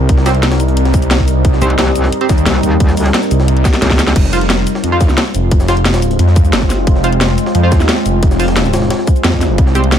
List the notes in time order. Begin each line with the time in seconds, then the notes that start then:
Already playing: C2 G3 C4 D#4 A#4
0.09 kick, closed hi-hat
0.18 snare
0.26 C4 G4 C5, snare, closed hi-hat, shaker
0.34 closed hi-hat
0.43 snare, closed hi-hat
0.51 snare, closed hi-hat
0.60 closed hi-hat, shaker
0.68 closed hi-hat
0.77 closed hi-hat
0.85 snare, closed hi-hat
0.94 C2, kick, closed hi-hat, shaker
1.02 closed hi-hat, shaker
1.11 snare, closed hi-hat
1.19 kick
1.28 closed hi-hat, shaker
1.45 C2, kick, closed hi-hat
1.53 snare
1.62 C2 C4 G4 C5, closed hi-hat, shaker
1.70 closed hi-hat
1.79 C2, snare, closed hi-hat
1.96 closed hi-hat, shaker
2.04 snare
2.12 closed hi-hat
2.21 C4 G4 C5, closed hi-hat
2.29 D#2, kick, snare, closed hi-hat, shaker
2.38 closed hi-hat, shaker
2.46 C2, snare, closed hi-hat
2.63 D#2, closed hi-hat, shaker
2.80 kick, closed hi-hat
2.89 snare, shaker
2.97 closed hi-hat, open hi-hat, shaker
3.06 snare, closed hi-hat
3.14 snare, closed hi-hat
3.23 closed hi-hat, shaker
3.31 C2, closed hi-hat, shaker
3.40 snare
3.48 closed hi-hat
3.57 closed hi-hat
3.65 kick, snare, closed hi-hat, shaker
3.74 snare, closed hi-hat, shaker
3.82 C#2, snare, closed hi-hat
3.90 kick, snare
3.99 snare, closed hi-hat, shaker
4.07 snare
4.16 F1 G#3 C4 F4 C5, kick, closed hi-hat, crash
4.24 snare
4.33 F4 C5 F5, closed hi-hat, shaker
4.41 closed hi-hat
4.50 snare, closed hi-hat
4.67 closed hi-hat, shaker
4.75 snare
4.84 F2, closed hi-hat
4.92 F4 C5 F5
5.01 kick, snare, closed hi-hat, shaker
5.09 snare, shaker
5.18 snare, closed hi-hat
5.34 F1, closed hi-hat, shaker
5.51 kick, closed hi-hat
5.60 snare, shaker
5.68 F4 C5 F5, snare, closed hi-hat, shaker
5.77 closed hi-hat
5.85 snare, closed hi-hat
5.94 snare, closed hi-hat, shaker
6.02 closed hi-hat, shaker
6.11 closed hi-hat
6.19 F2, closed hi-hat
6.28 snare
6.36 kick, closed hi-hat, shaker
6.45 closed hi-hat, shaker
6.53 G1, snare, closed hi-hat
6.62 kick
6.70 snare, closed hi-hat, shaker
6.87 F1, kick, closed hi-hat
6.96 snare
7.04 F4 C5 F5, closed hi-hat, shaker
7.12 closed hi-hat
7.21 snare, closed hi-hat
7.38 closed hi-hat, shaker
7.46 snare
7.55 F2, closed hi-hat
7.63 F4 C5 F5
7.72 kick, snare, closed hi-hat, shaker
7.80 snare, shaker
7.89 snare, closed hi-hat
8.06 F1, closed hi-hat, shaker
8.23 kick, closed hi-hat
8.31 snare, shaker
8.40 F4 C5 F5, closed hi-hat, open hi-hat, shaker
8.48 snare, closed hi-hat
8.57 snare, closed hi-hat
8.65 closed hi-hat, shaker
8.73 snare, closed hi-hat, shaker
8.82 snare
8.90 snare, closed hi-hat
8.99 snare
9.07 kick, closed hi-hat, shaker
9.16 closed hi-hat, shaker
9.24 F2, snare, closed hi-hat
9.33 kick
9.41 snare, closed hi-hat, shaker
9.58 C2 G3 C4 D#4 A#4, kick, closed hi-hat
9.67 snare
9.75 C4 G4 C5, closed hi-hat, shaker
9.84 closed hi-hat
9.92 snare, closed hi-hat